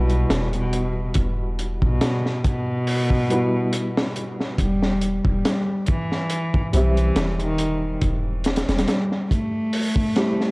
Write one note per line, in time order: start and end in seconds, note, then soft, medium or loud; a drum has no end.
0.00 0.25 B1 medium
0.00 0.47 B2 medium
0.00 3.25 G3 medium
0.00 3.26 B3 medium
0.00 3.26 E4 medium
0.00 3.27 F#4 medium
0.10 closed hi-hat soft
0.30 1.12 E1 medium
0.30 snare loud
0.30 closed hi-hat medium
0.53 1.11 B2 medium
0.53 closed hi-hat soft
0.73 closed hi-hat medium
1.14 1.84 E1 medium
1.14 kick loud
1.14 closed hi-hat medium
1.59 closed hi-hat medium
1.82 1.99 B1 medium
1.82 2.39 B2 medium
1.82 kick loud
2.01 snare loud
2.01 closed hi-hat medium
2.26 snare soft
2.44 4.44 B2 loud
2.44 kick medium
2.44 closed hi-hat medium
2.87 open hi-hat medium
3.10 kick medium
3.29 4.56 G3 medium
3.29 4.57 B3 medium
3.29 4.57 E4 medium
3.29 closed hi-hat medium
3.33 4.58 F#4 medium
3.73 closed hi-hat loud
3.97 snare loud
4.16 closed hi-hat medium
4.40 snare soft
4.58 5.20 E1 medium
4.58 5.19 G3 medium
4.58 kick medium
4.58 closed hi-hat medium
4.83 snare medium
5.01 closed hi-hat medium
5.25 5.42 E1 loud
5.25 5.82 G3 medium
5.25 kick medium
5.45 snare loud
5.45 closed hi-hat medium
5.86 6.66 E3 loud
5.86 kick medium
5.86 closed hi-hat medium
6.12 snare soft
6.30 closed hi-hat medium
6.54 kick loud
6.72 7.11 B1 medium
6.72 7.34 E3 medium
6.72 10.11 G3 medium
6.72 10.11 C4 medium
6.72 10.12 E5 medium
6.72 closed hi-hat medium
6.77 10.13 G4 medium
6.97 closed hi-hat soft
7.16 7.98 E1 medium
7.16 snare loud
7.16 closed hi-hat medium
7.40 7.97 D#3 medium
7.40 closed hi-hat soft
7.58 closed hi-hat medium
8.02 8.64 E1 medium
8.02 kick medium
8.02 closed hi-hat medium
8.44 snare medium
8.44 closed hi-hat medium
8.56 snare medium
8.56 closed hi-hat medium
8.68 8.85 E1 loud
8.68 9.25 G3 medium
8.68 snare medium
8.68 closed hi-hat medium
8.78 snare medium
8.78 closed hi-hat medium
8.88 snare loud
8.88 closed hi-hat medium
9.12 snare soft
9.31 10.51 A3 loud
9.31 kick medium
9.31 closed hi-hat medium
9.73 open hi-hat medium
9.96 kick medium
10.16 10.51 G3 medium
10.16 10.51 C4 medium
10.16 10.51 E4 medium
10.16 10.51 G4 medium
10.16 snare medium
10.16 closed hi-hat medium
10.41 snare soft